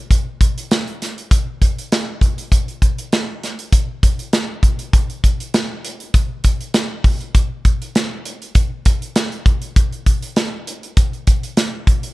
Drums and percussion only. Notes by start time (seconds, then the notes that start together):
0.11 kick, closed hi-hat
0.41 kick, closed hi-hat
0.58 closed hi-hat
0.71 snare, closed hi-hat
0.87 closed hi-hat
1.02 snare, closed hi-hat
1.18 closed hi-hat
1.31 kick, closed hi-hat
1.62 kick, closed hi-hat
1.78 closed hi-hat
1.92 snare, closed hi-hat
2.21 kick, closed hi-hat
2.38 closed hi-hat
2.52 kick, closed hi-hat
2.68 closed hi-hat
2.82 kick, closed hi-hat
2.98 closed hi-hat
3.13 snare, closed hi-hat
3.43 snare, closed hi-hat
3.59 closed hi-hat
3.72 kick, closed hi-hat
4.03 kick, closed hi-hat
4.19 closed hi-hat
4.33 snare, closed hi-hat
4.63 kick, closed hi-hat
4.79 closed hi-hat
4.93 kick, closed hi-hat
5.10 closed hi-hat
5.24 kick, closed hi-hat
5.40 closed hi-hat
5.54 snare, closed hi-hat
5.85 closed hi-hat
6.00 closed hi-hat
6.14 kick, closed hi-hat
6.44 kick, closed hi-hat
6.61 closed hi-hat
6.74 snare, closed hi-hat
7.04 kick, open hi-hat
7.21 closed hi-hat
7.35 kick, closed hi-hat
7.65 kick, closed hi-hat
7.82 closed hi-hat
7.95 snare, closed hi-hat
8.25 closed hi-hat
8.42 closed hi-hat
8.55 kick, closed hi-hat
8.85 kick, closed hi-hat
9.02 closed hi-hat
9.16 snare, closed hi-hat
9.32 closed hi-hat
9.46 kick, closed hi-hat
9.62 closed hi-hat
9.76 kick, closed hi-hat
9.93 closed hi-hat
10.06 kick, closed hi-hat
10.22 closed hi-hat
10.36 snare, closed hi-hat
10.67 closed hi-hat
10.83 closed hi-hat
10.97 kick, closed hi-hat
11.13 closed hi-hat
11.27 kick, closed hi-hat
11.43 closed hi-hat
11.57 snare, closed hi-hat
11.87 kick, closed hi-hat
12.03 closed hi-hat